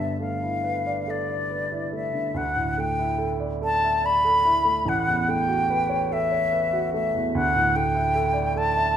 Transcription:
Already playing: grand piano G1 G2 D3, flute E5
0.20 grand piano A3, flute F5
0.43 grand piano E4
0.64 grand piano B4
0.87 grand piano D5
1.07 grand piano A4, flute D5
1.29 grand piano D5
1.50 grand piano B4
1.72 grand piano E4
1.92 grand piano A3, flute E5
2.13 grand piano D3
2.34 grand piano D2, flute F#5
2.56 grand piano A2
2.78 grand piano A3, flute G5
2.99 grand piano E4
3.18 grand piano A4
3.40 grand piano D5
3.62 grand piano A4, flute A5
3.84 grand piano E5
4.04 grand piano D5, flute B5
4.25 grand piano A4
4.45 grand piano E4
4.64 grand piano A3
4.85 grand piano A1, flute F#5
5.08 grand piano E2
5.28 grand piano A3, flute G5
5.48 grand piano F#4
5.70 grand piano B4
5.89 grand piano C#5
6.11 grand piano A4, flute E5
6.32 grand piano C#5
6.52 grand piano B4
6.73 grand piano F#4
6.94 grand piano A3, flute E5
7.14 grand piano E2
7.35 grand piano D2, flute F#5
7.55 grand piano A2
7.76 grand piano A3, flute G5
7.95 grand piano E4
8.15 grand piano A4
8.34 grand piano D5
8.56 grand piano A4, flute A5
8.77 grand piano E5

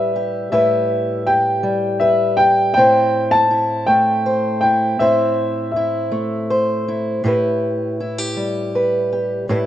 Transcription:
Already playing: steel-string acoustic guitar A2 G3 E4 G4 B4, upright piano E5
0.16 steel-string acoustic guitar G4
0.52 steel-string acoustic guitar A2 E4 G4 B4, upright piano E5
1.26 steel-string acoustic guitar G4, upright piano G5
1.63 steel-string acoustic guitar G3
2.00 steel-string acoustic guitar B4, upright piano E5
2.37 steel-string acoustic guitar G4, upright piano G5
2.74 steel-string acoustic guitar A2 C4 E4, upright piano G5
2.79 steel-string acoustic guitar C5
3.31 upright piano A5
3.51 steel-string acoustic guitar E4
3.86 steel-string acoustic guitar A3, upright piano G5
4.26 steel-string acoustic guitar C5
4.61 steel-string acoustic guitar E4, upright piano G5
4.99 steel-string acoustic guitar A2 C4 E4 C5, upright piano E5
5.72 upright piano E5
5.76 steel-string acoustic guitar E4
6.12 steel-string acoustic guitar A3
6.50 steel-string acoustic guitar C5
6.88 steel-string acoustic guitar E4
7.24 cello A2, steel-string acoustic guitar A2 E4 G4 B4
8.00 steel-string acoustic guitar E4
8.18 steel-string acoustic guitar G4
8.37 steel-string acoustic guitar G3
8.75 steel-string acoustic guitar B4
9.13 steel-string acoustic guitar G4
9.49 cello A2, steel-string acoustic guitar A2 E4 G4 B4

